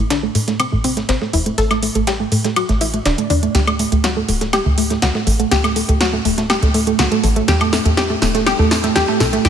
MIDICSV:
0, 0, Header, 1, 4, 480
1, 0, Start_track
1, 0, Tempo, 491803
1, 1542, Time_signature, 4, 2, 24, 8
1, 9263, End_track
2, 0, Start_track
2, 0, Title_t, "Synth arpeggio sound"
2, 0, Program_c, 0, 84
2, 102, Note_on_c, 0, 62, 90
2, 188, Note_off_c, 0, 62, 0
2, 226, Note_on_c, 0, 57, 63
2, 306, Note_off_c, 0, 57, 0
2, 342, Note_on_c, 0, 57, 63
2, 428, Note_off_c, 0, 57, 0
2, 467, Note_on_c, 0, 57, 66
2, 547, Note_off_c, 0, 57, 0
2, 583, Note_on_c, 0, 60, 91
2, 669, Note_off_c, 0, 60, 0
2, 707, Note_on_c, 0, 57, 64
2, 787, Note_off_c, 0, 57, 0
2, 823, Note_on_c, 0, 60, 89
2, 909, Note_off_c, 0, 60, 0
2, 947, Note_on_c, 0, 57, 64
2, 1027, Note_off_c, 0, 57, 0
2, 1063, Note_on_c, 0, 60, 91
2, 1149, Note_off_c, 0, 60, 0
2, 1187, Note_on_c, 0, 57, 62
2, 1267, Note_off_c, 0, 57, 0
2, 1302, Note_on_c, 0, 64, 91
2, 1388, Note_off_c, 0, 64, 0
2, 1427, Note_on_c, 0, 57, 67
2, 1507, Note_off_c, 0, 57, 0
2, 1542, Note_on_c, 0, 69, 99
2, 1628, Note_off_c, 0, 69, 0
2, 1667, Note_on_c, 0, 57, 63
2, 1747, Note_off_c, 0, 57, 0
2, 1782, Note_on_c, 0, 57, 68
2, 1868, Note_off_c, 0, 57, 0
2, 1907, Note_on_c, 0, 57, 65
2, 1987, Note_off_c, 0, 57, 0
2, 2023, Note_on_c, 0, 67, 93
2, 2108, Note_off_c, 0, 67, 0
2, 2147, Note_on_c, 0, 57, 66
2, 2227, Note_off_c, 0, 57, 0
2, 2263, Note_on_c, 0, 57, 63
2, 2348, Note_off_c, 0, 57, 0
2, 2388, Note_on_c, 0, 57, 67
2, 2467, Note_off_c, 0, 57, 0
2, 2503, Note_on_c, 0, 66, 88
2, 2589, Note_off_c, 0, 66, 0
2, 2627, Note_on_c, 0, 57, 65
2, 2707, Note_off_c, 0, 57, 0
2, 2743, Note_on_c, 0, 64, 91
2, 2829, Note_off_c, 0, 64, 0
2, 2867, Note_on_c, 0, 57, 64
2, 2947, Note_off_c, 0, 57, 0
2, 2982, Note_on_c, 0, 62, 92
2, 3068, Note_off_c, 0, 62, 0
2, 3106, Note_on_c, 0, 57, 64
2, 3186, Note_off_c, 0, 57, 0
2, 3222, Note_on_c, 0, 62, 92
2, 3308, Note_off_c, 0, 62, 0
2, 3347, Note_on_c, 0, 57, 68
2, 3427, Note_off_c, 0, 57, 0
2, 3462, Note_on_c, 0, 67, 90
2, 3548, Note_off_c, 0, 67, 0
2, 3586, Note_on_c, 0, 57, 57
2, 3666, Note_off_c, 0, 57, 0
2, 3703, Note_on_c, 0, 57, 62
2, 3789, Note_off_c, 0, 57, 0
2, 3827, Note_on_c, 0, 57, 59
2, 3907, Note_off_c, 0, 57, 0
2, 3943, Note_on_c, 0, 66, 88
2, 4028, Note_off_c, 0, 66, 0
2, 4067, Note_on_c, 0, 57, 58
2, 4147, Note_off_c, 0, 57, 0
2, 4183, Note_on_c, 0, 57, 58
2, 4268, Note_off_c, 0, 57, 0
2, 4307, Note_on_c, 0, 57, 61
2, 4387, Note_off_c, 0, 57, 0
2, 4422, Note_on_c, 0, 67, 90
2, 4508, Note_off_c, 0, 67, 0
2, 4547, Note_on_c, 0, 57, 58
2, 4627, Note_off_c, 0, 57, 0
2, 4663, Note_on_c, 0, 57, 62
2, 4748, Note_off_c, 0, 57, 0
2, 4787, Note_on_c, 0, 57, 61
2, 4867, Note_off_c, 0, 57, 0
2, 4903, Note_on_c, 0, 66, 92
2, 4988, Note_off_c, 0, 66, 0
2, 5027, Note_on_c, 0, 57, 60
2, 5107, Note_off_c, 0, 57, 0
2, 5143, Note_on_c, 0, 57, 63
2, 5228, Note_off_c, 0, 57, 0
2, 5266, Note_on_c, 0, 57, 62
2, 5346, Note_off_c, 0, 57, 0
2, 5382, Note_on_c, 0, 67, 95
2, 5468, Note_off_c, 0, 67, 0
2, 5506, Note_on_c, 0, 57, 62
2, 5587, Note_off_c, 0, 57, 0
2, 5622, Note_on_c, 0, 57, 63
2, 5708, Note_off_c, 0, 57, 0
2, 5746, Note_on_c, 0, 57, 63
2, 5826, Note_off_c, 0, 57, 0
2, 5862, Note_on_c, 0, 66, 89
2, 5948, Note_off_c, 0, 66, 0
2, 5986, Note_on_c, 0, 57, 63
2, 6066, Note_off_c, 0, 57, 0
2, 6102, Note_on_c, 0, 57, 62
2, 6188, Note_off_c, 0, 57, 0
2, 6226, Note_on_c, 0, 57, 65
2, 6306, Note_off_c, 0, 57, 0
2, 6343, Note_on_c, 0, 67, 94
2, 6428, Note_off_c, 0, 67, 0
2, 6467, Note_on_c, 0, 57, 65
2, 6547, Note_off_c, 0, 57, 0
2, 6582, Note_on_c, 0, 57, 63
2, 6668, Note_off_c, 0, 57, 0
2, 6706, Note_on_c, 0, 57, 63
2, 6787, Note_off_c, 0, 57, 0
2, 6821, Note_on_c, 0, 66, 90
2, 6908, Note_off_c, 0, 66, 0
2, 6946, Note_on_c, 0, 57, 62
2, 7027, Note_off_c, 0, 57, 0
2, 7062, Note_on_c, 0, 57, 66
2, 7148, Note_off_c, 0, 57, 0
2, 7186, Note_on_c, 0, 57, 66
2, 7267, Note_off_c, 0, 57, 0
2, 7302, Note_on_c, 0, 67, 99
2, 7388, Note_off_c, 0, 67, 0
2, 7426, Note_on_c, 0, 57, 65
2, 7507, Note_off_c, 0, 57, 0
2, 7543, Note_on_c, 0, 57, 65
2, 7628, Note_off_c, 0, 57, 0
2, 7666, Note_on_c, 0, 57, 61
2, 7747, Note_off_c, 0, 57, 0
2, 7782, Note_on_c, 0, 67, 99
2, 7868, Note_off_c, 0, 67, 0
2, 7906, Note_on_c, 0, 57, 63
2, 7986, Note_off_c, 0, 57, 0
2, 8022, Note_on_c, 0, 57, 63
2, 8108, Note_off_c, 0, 57, 0
2, 8146, Note_on_c, 0, 57, 68
2, 8226, Note_off_c, 0, 57, 0
2, 8261, Note_on_c, 0, 67, 97
2, 8347, Note_off_c, 0, 67, 0
2, 8386, Note_on_c, 0, 57, 65
2, 8466, Note_off_c, 0, 57, 0
2, 8501, Note_on_c, 0, 57, 64
2, 8588, Note_off_c, 0, 57, 0
2, 8626, Note_on_c, 0, 57, 65
2, 8706, Note_off_c, 0, 57, 0
2, 8741, Note_on_c, 0, 67, 104
2, 8827, Note_off_c, 0, 67, 0
2, 8866, Note_on_c, 0, 57, 65
2, 8946, Note_off_c, 0, 57, 0
2, 8982, Note_on_c, 0, 57, 67
2, 9068, Note_off_c, 0, 57, 0
2, 9106, Note_on_c, 0, 57, 69
2, 9186, Note_off_c, 0, 57, 0
2, 9222, Note_on_c, 0, 67, 99
2, 9263, Note_off_c, 0, 67, 0
2, 9263, End_track
3, 0, Start_track
3, 0, Title_t, "Analog synth bass"
3, 0, Program_c, 1, 38
3, 0, Note_on_c, 1, 33, 83
3, 294, Note_off_c, 1, 33, 0
3, 343, Note_on_c, 1, 45, 82
3, 655, Note_off_c, 1, 45, 0
3, 706, Note_on_c, 1, 33, 91
3, 1014, Note_off_c, 1, 33, 0
3, 1063, Note_on_c, 1, 33, 84
3, 1154, Note_off_c, 1, 33, 0
3, 1302, Note_on_c, 1, 28, 107
3, 1482, Note_off_c, 1, 28, 0
3, 1542, Note_on_c, 1, 33, 105
3, 1854, Note_off_c, 1, 33, 0
3, 1906, Note_on_c, 1, 33, 83
3, 2214, Note_off_c, 1, 33, 0
3, 2263, Note_on_c, 1, 45, 80
3, 2575, Note_off_c, 1, 45, 0
3, 2627, Note_on_c, 1, 33, 91
3, 2934, Note_off_c, 1, 33, 0
3, 2983, Note_on_c, 1, 28, 88
3, 3074, Note_off_c, 1, 28, 0
3, 3223, Note_on_c, 1, 40, 105
3, 3402, Note_off_c, 1, 40, 0
3, 3463, Note_on_c, 1, 38, 101
3, 3775, Note_off_c, 1, 38, 0
3, 3827, Note_on_c, 1, 38, 84
3, 4134, Note_off_c, 1, 38, 0
3, 4183, Note_on_c, 1, 26, 81
3, 4495, Note_off_c, 1, 26, 0
3, 4547, Note_on_c, 1, 38, 95
3, 4854, Note_off_c, 1, 38, 0
3, 4902, Note_on_c, 1, 38, 85
3, 4994, Note_off_c, 1, 38, 0
3, 5143, Note_on_c, 1, 33, 107
3, 5322, Note_off_c, 1, 33, 0
3, 5383, Note_on_c, 1, 38, 100
3, 5695, Note_off_c, 1, 38, 0
3, 5747, Note_on_c, 1, 38, 87
3, 6054, Note_off_c, 1, 38, 0
3, 6102, Note_on_c, 1, 26, 79
3, 6415, Note_off_c, 1, 26, 0
3, 6466, Note_on_c, 1, 38, 93
3, 6774, Note_off_c, 1, 38, 0
3, 6822, Note_on_c, 1, 38, 86
3, 6914, Note_off_c, 1, 38, 0
3, 7062, Note_on_c, 1, 33, 106
3, 7242, Note_off_c, 1, 33, 0
3, 7303, Note_on_c, 1, 40, 108
3, 7615, Note_off_c, 1, 40, 0
3, 7666, Note_on_c, 1, 40, 86
3, 7974, Note_off_c, 1, 40, 0
3, 8022, Note_on_c, 1, 28, 79
3, 8335, Note_off_c, 1, 28, 0
3, 8386, Note_on_c, 1, 40, 94
3, 8694, Note_off_c, 1, 40, 0
3, 8743, Note_on_c, 1, 40, 85
3, 8834, Note_off_c, 1, 40, 0
3, 8983, Note_on_c, 1, 35, 105
3, 9162, Note_off_c, 1, 35, 0
3, 9223, Note_on_c, 1, 40, 103
3, 9263, Note_off_c, 1, 40, 0
3, 9263, End_track
4, 0, Start_track
4, 0, Title_t, "Drums"
4, 102, Note_on_c, 9, 38, 118
4, 102, Note_on_c, 9, 42, 75
4, 102, Note_on_c, 9, 51, 85
4, 199, Note_off_c, 9, 38, 0
4, 199, Note_off_c, 9, 42, 0
4, 199, Note_off_c, 9, 51, 0
4, 342, Note_on_c, 9, 46, 93
4, 342, Note_on_c, 9, 51, 69
4, 439, Note_off_c, 9, 46, 0
4, 440, Note_off_c, 9, 51, 0
4, 466, Note_on_c, 9, 38, 47
4, 466, Note_on_c, 9, 42, 51
4, 563, Note_off_c, 9, 42, 0
4, 564, Note_off_c, 9, 38, 0
4, 582, Note_on_c, 9, 42, 73
4, 582, Note_on_c, 9, 51, 83
4, 582, Note_on_c, 9, 76, 79
4, 679, Note_off_c, 9, 42, 0
4, 679, Note_off_c, 9, 76, 0
4, 680, Note_off_c, 9, 51, 0
4, 822, Note_on_c, 9, 46, 110
4, 822, Note_on_c, 9, 51, 71
4, 919, Note_off_c, 9, 46, 0
4, 920, Note_off_c, 9, 51, 0
4, 946, Note_on_c, 9, 42, 50
4, 947, Note_on_c, 9, 38, 37
4, 1044, Note_off_c, 9, 42, 0
4, 1045, Note_off_c, 9, 38, 0
4, 1062, Note_on_c, 9, 42, 77
4, 1063, Note_on_c, 9, 38, 121
4, 1063, Note_on_c, 9, 51, 86
4, 1160, Note_off_c, 9, 38, 0
4, 1160, Note_off_c, 9, 42, 0
4, 1160, Note_off_c, 9, 51, 0
4, 1187, Note_on_c, 9, 38, 47
4, 1285, Note_off_c, 9, 38, 0
4, 1302, Note_on_c, 9, 46, 96
4, 1303, Note_on_c, 9, 51, 68
4, 1399, Note_off_c, 9, 46, 0
4, 1400, Note_off_c, 9, 51, 0
4, 1426, Note_on_c, 9, 42, 52
4, 1524, Note_off_c, 9, 42, 0
4, 1542, Note_on_c, 9, 42, 74
4, 1543, Note_on_c, 9, 46, 82
4, 1639, Note_off_c, 9, 42, 0
4, 1640, Note_off_c, 9, 46, 0
4, 1666, Note_on_c, 9, 42, 34
4, 1666, Note_on_c, 9, 76, 66
4, 1667, Note_on_c, 9, 38, 46
4, 1764, Note_off_c, 9, 42, 0
4, 1764, Note_off_c, 9, 76, 0
4, 1765, Note_off_c, 9, 38, 0
4, 1782, Note_on_c, 9, 46, 105
4, 1783, Note_on_c, 9, 51, 67
4, 1879, Note_off_c, 9, 46, 0
4, 1881, Note_off_c, 9, 51, 0
4, 1906, Note_on_c, 9, 42, 50
4, 1907, Note_on_c, 9, 51, 45
4, 2004, Note_off_c, 9, 42, 0
4, 2005, Note_off_c, 9, 51, 0
4, 2022, Note_on_c, 9, 42, 72
4, 2024, Note_on_c, 9, 38, 112
4, 2024, Note_on_c, 9, 51, 88
4, 2120, Note_off_c, 9, 42, 0
4, 2121, Note_off_c, 9, 38, 0
4, 2121, Note_off_c, 9, 51, 0
4, 2262, Note_on_c, 9, 46, 90
4, 2264, Note_on_c, 9, 51, 68
4, 2360, Note_off_c, 9, 46, 0
4, 2361, Note_off_c, 9, 51, 0
4, 2386, Note_on_c, 9, 42, 50
4, 2387, Note_on_c, 9, 38, 55
4, 2484, Note_off_c, 9, 42, 0
4, 2485, Note_off_c, 9, 38, 0
4, 2502, Note_on_c, 9, 42, 73
4, 2502, Note_on_c, 9, 76, 81
4, 2503, Note_on_c, 9, 51, 85
4, 2600, Note_off_c, 9, 42, 0
4, 2600, Note_off_c, 9, 76, 0
4, 2601, Note_off_c, 9, 51, 0
4, 2626, Note_on_c, 9, 42, 37
4, 2627, Note_on_c, 9, 38, 36
4, 2724, Note_off_c, 9, 42, 0
4, 2725, Note_off_c, 9, 38, 0
4, 2742, Note_on_c, 9, 46, 112
4, 2743, Note_on_c, 9, 51, 70
4, 2839, Note_off_c, 9, 46, 0
4, 2840, Note_off_c, 9, 51, 0
4, 2866, Note_on_c, 9, 42, 49
4, 2964, Note_off_c, 9, 42, 0
4, 2982, Note_on_c, 9, 42, 76
4, 2983, Note_on_c, 9, 38, 114
4, 2983, Note_on_c, 9, 51, 86
4, 3079, Note_off_c, 9, 42, 0
4, 3080, Note_off_c, 9, 38, 0
4, 3080, Note_off_c, 9, 51, 0
4, 3106, Note_on_c, 9, 42, 35
4, 3107, Note_on_c, 9, 51, 44
4, 3204, Note_off_c, 9, 42, 0
4, 3204, Note_off_c, 9, 51, 0
4, 3222, Note_on_c, 9, 46, 91
4, 3223, Note_on_c, 9, 51, 68
4, 3319, Note_off_c, 9, 46, 0
4, 3320, Note_off_c, 9, 51, 0
4, 3347, Note_on_c, 9, 42, 52
4, 3444, Note_off_c, 9, 42, 0
4, 3462, Note_on_c, 9, 38, 49
4, 3462, Note_on_c, 9, 42, 75
4, 3463, Note_on_c, 9, 51, 87
4, 3560, Note_off_c, 9, 38, 0
4, 3560, Note_off_c, 9, 42, 0
4, 3560, Note_off_c, 9, 51, 0
4, 3587, Note_on_c, 9, 42, 35
4, 3587, Note_on_c, 9, 76, 69
4, 3684, Note_off_c, 9, 42, 0
4, 3684, Note_off_c, 9, 76, 0
4, 3702, Note_on_c, 9, 46, 105
4, 3703, Note_on_c, 9, 51, 66
4, 3800, Note_off_c, 9, 46, 0
4, 3801, Note_off_c, 9, 51, 0
4, 3827, Note_on_c, 9, 42, 50
4, 3827, Note_on_c, 9, 51, 44
4, 3924, Note_off_c, 9, 42, 0
4, 3924, Note_off_c, 9, 51, 0
4, 3942, Note_on_c, 9, 38, 52
4, 3942, Note_on_c, 9, 42, 76
4, 3943, Note_off_c, 9, 38, 0
4, 3943, Note_on_c, 9, 38, 115
4, 3943, Note_on_c, 9, 51, 89
4, 4040, Note_off_c, 9, 38, 0
4, 4040, Note_off_c, 9, 42, 0
4, 4040, Note_off_c, 9, 51, 0
4, 4182, Note_on_c, 9, 46, 90
4, 4183, Note_on_c, 9, 51, 69
4, 4280, Note_off_c, 9, 46, 0
4, 4281, Note_off_c, 9, 51, 0
4, 4307, Note_on_c, 9, 38, 47
4, 4307, Note_on_c, 9, 42, 50
4, 4404, Note_off_c, 9, 42, 0
4, 4405, Note_off_c, 9, 38, 0
4, 4422, Note_on_c, 9, 38, 49
4, 4422, Note_on_c, 9, 42, 72
4, 4422, Note_on_c, 9, 51, 88
4, 4422, Note_on_c, 9, 76, 85
4, 4520, Note_off_c, 9, 38, 0
4, 4520, Note_off_c, 9, 42, 0
4, 4520, Note_off_c, 9, 51, 0
4, 4520, Note_off_c, 9, 76, 0
4, 4662, Note_on_c, 9, 46, 110
4, 4663, Note_on_c, 9, 51, 69
4, 4760, Note_off_c, 9, 46, 0
4, 4760, Note_off_c, 9, 51, 0
4, 4787, Note_on_c, 9, 38, 37
4, 4787, Note_on_c, 9, 42, 49
4, 4884, Note_off_c, 9, 42, 0
4, 4885, Note_off_c, 9, 38, 0
4, 4902, Note_on_c, 9, 38, 57
4, 4902, Note_on_c, 9, 42, 74
4, 4903, Note_off_c, 9, 38, 0
4, 4903, Note_on_c, 9, 38, 121
4, 4903, Note_on_c, 9, 51, 88
4, 5000, Note_off_c, 9, 38, 0
4, 5000, Note_off_c, 9, 42, 0
4, 5000, Note_off_c, 9, 51, 0
4, 5027, Note_on_c, 9, 38, 50
4, 5125, Note_off_c, 9, 38, 0
4, 5142, Note_on_c, 9, 46, 95
4, 5143, Note_on_c, 9, 51, 68
4, 5240, Note_off_c, 9, 46, 0
4, 5240, Note_off_c, 9, 51, 0
4, 5267, Note_on_c, 9, 42, 50
4, 5364, Note_off_c, 9, 42, 0
4, 5382, Note_on_c, 9, 38, 60
4, 5382, Note_on_c, 9, 42, 77
4, 5383, Note_on_c, 9, 46, 83
4, 5480, Note_off_c, 9, 38, 0
4, 5480, Note_off_c, 9, 42, 0
4, 5480, Note_off_c, 9, 46, 0
4, 5506, Note_on_c, 9, 38, 46
4, 5507, Note_on_c, 9, 42, 35
4, 5507, Note_on_c, 9, 76, 68
4, 5604, Note_off_c, 9, 38, 0
4, 5604, Note_off_c, 9, 42, 0
4, 5604, Note_off_c, 9, 76, 0
4, 5622, Note_on_c, 9, 46, 101
4, 5622, Note_on_c, 9, 51, 65
4, 5720, Note_off_c, 9, 46, 0
4, 5720, Note_off_c, 9, 51, 0
4, 5746, Note_on_c, 9, 42, 51
4, 5746, Note_on_c, 9, 51, 45
4, 5844, Note_off_c, 9, 42, 0
4, 5844, Note_off_c, 9, 51, 0
4, 5862, Note_on_c, 9, 38, 116
4, 5862, Note_on_c, 9, 42, 78
4, 5862, Note_on_c, 9, 51, 87
4, 5959, Note_off_c, 9, 42, 0
4, 5960, Note_off_c, 9, 38, 0
4, 5960, Note_off_c, 9, 51, 0
4, 6102, Note_on_c, 9, 46, 85
4, 6102, Note_on_c, 9, 51, 71
4, 6199, Note_off_c, 9, 51, 0
4, 6200, Note_off_c, 9, 46, 0
4, 6226, Note_on_c, 9, 38, 55
4, 6226, Note_on_c, 9, 42, 53
4, 6323, Note_off_c, 9, 38, 0
4, 6323, Note_off_c, 9, 42, 0
4, 6342, Note_on_c, 9, 38, 62
4, 6342, Note_on_c, 9, 42, 74
4, 6342, Note_on_c, 9, 51, 90
4, 6342, Note_on_c, 9, 76, 86
4, 6439, Note_off_c, 9, 51, 0
4, 6440, Note_off_c, 9, 38, 0
4, 6440, Note_off_c, 9, 42, 0
4, 6440, Note_off_c, 9, 76, 0
4, 6466, Note_on_c, 9, 38, 37
4, 6466, Note_on_c, 9, 42, 38
4, 6564, Note_off_c, 9, 38, 0
4, 6564, Note_off_c, 9, 42, 0
4, 6582, Note_on_c, 9, 46, 105
4, 6582, Note_on_c, 9, 51, 68
4, 6679, Note_off_c, 9, 46, 0
4, 6680, Note_off_c, 9, 51, 0
4, 6706, Note_on_c, 9, 42, 51
4, 6803, Note_off_c, 9, 42, 0
4, 6821, Note_on_c, 9, 38, 72
4, 6821, Note_on_c, 9, 42, 79
4, 6822, Note_off_c, 9, 38, 0
4, 6822, Note_on_c, 9, 38, 121
4, 6822, Note_on_c, 9, 51, 89
4, 6919, Note_off_c, 9, 38, 0
4, 6919, Note_off_c, 9, 42, 0
4, 6919, Note_off_c, 9, 51, 0
4, 6946, Note_on_c, 9, 42, 38
4, 6946, Note_on_c, 9, 51, 43
4, 7043, Note_off_c, 9, 42, 0
4, 7044, Note_off_c, 9, 51, 0
4, 7062, Note_on_c, 9, 46, 88
4, 7062, Note_on_c, 9, 51, 71
4, 7159, Note_off_c, 9, 46, 0
4, 7159, Note_off_c, 9, 51, 0
4, 7186, Note_on_c, 9, 42, 51
4, 7283, Note_off_c, 9, 42, 0
4, 7302, Note_on_c, 9, 38, 72
4, 7302, Note_on_c, 9, 42, 81
4, 7302, Note_on_c, 9, 51, 86
4, 7399, Note_off_c, 9, 38, 0
4, 7399, Note_off_c, 9, 42, 0
4, 7399, Note_off_c, 9, 51, 0
4, 7426, Note_on_c, 9, 42, 38
4, 7426, Note_on_c, 9, 76, 65
4, 7524, Note_off_c, 9, 42, 0
4, 7524, Note_off_c, 9, 76, 0
4, 7542, Note_on_c, 9, 38, 77
4, 7542, Note_on_c, 9, 46, 100
4, 7542, Note_on_c, 9, 51, 70
4, 7640, Note_off_c, 9, 38, 0
4, 7640, Note_off_c, 9, 46, 0
4, 7640, Note_off_c, 9, 51, 0
4, 7667, Note_on_c, 9, 42, 53
4, 7667, Note_on_c, 9, 51, 46
4, 7764, Note_off_c, 9, 42, 0
4, 7764, Note_off_c, 9, 51, 0
4, 7782, Note_on_c, 9, 38, 118
4, 7782, Note_on_c, 9, 42, 78
4, 7782, Note_on_c, 9, 51, 87
4, 7880, Note_off_c, 9, 38, 0
4, 7880, Note_off_c, 9, 42, 0
4, 7880, Note_off_c, 9, 51, 0
4, 8022, Note_on_c, 9, 38, 80
4, 8022, Note_on_c, 9, 46, 87
4, 8022, Note_on_c, 9, 51, 69
4, 8120, Note_off_c, 9, 38, 0
4, 8120, Note_off_c, 9, 46, 0
4, 8120, Note_off_c, 9, 51, 0
4, 8146, Note_on_c, 9, 38, 47
4, 8146, Note_on_c, 9, 42, 53
4, 8244, Note_off_c, 9, 38, 0
4, 8244, Note_off_c, 9, 42, 0
4, 8262, Note_on_c, 9, 38, 81
4, 8262, Note_on_c, 9, 42, 80
4, 8262, Note_on_c, 9, 51, 88
4, 8262, Note_on_c, 9, 76, 86
4, 8360, Note_off_c, 9, 38, 0
4, 8360, Note_off_c, 9, 42, 0
4, 8360, Note_off_c, 9, 51, 0
4, 8360, Note_off_c, 9, 76, 0
4, 8502, Note_on_c, 9, 51, 70
4, 8503, Note_on_c, 9, 38, 88
4, 8503, Note_on_c, 9, 46, 100
4, 8600, Note_off_c, 9, 38, 0
4, 8600, Note_off_c, 9, 46, 0
4, 8600, Note_off_c, 9, 51, 0
4, 8626, Note_on_c, 9, 38, 37
4, 8626, Note_on_c, 9, 42, 53
4, 8723, Note_off_c, 9, 38, 0
4, 8724, Note_off_c, 9, 42, 0
4, 8742, Note_on_c, 9, 38, 88
4, 8742, Note_on_c, 9, 42, 82
4, 8742, Note_on_c, 9, 51, 90
4, 8839, Note_off_c, 9, 51, 0
4, 8840, Note_off_c, 9, 38, 0
4, 8840, Note_off_c, 9, 42, 0
4, 8866, Note_on_c, 9, 38, 49
4, 8964, Note_off_c, 9, 38, 0
4, 8982, Note_on_c, 9, 38, 88
4, 8982, Note_on_c, 9, 46, 88
4, 8982, Note_on_c, 9, 51, 67
4, 9080, Note_off_c, 9, 38, 0
4, 9080, Note_off_c, 9, 46, 0
4, 9080, Note_off_c, 9, 51, 0
4, 9106, Note_on_c, 9, 42, 55
4, 9204, Note_off_c, 9, 42, 0
4, 9222, Note_on_c, 9, 38, 89
4, 9222, Note_on_c, 9, 42, 84
4, 9223, Note_on_c, 9, 46, 85
4, 9263, Note_off_c, 9, 38, 0
4, 9263, Note_off_c, 9, 42, 0
4, 9263, Note_off_c, 9, 46, 0
4, 9263, End_track
0, 0, End_of_file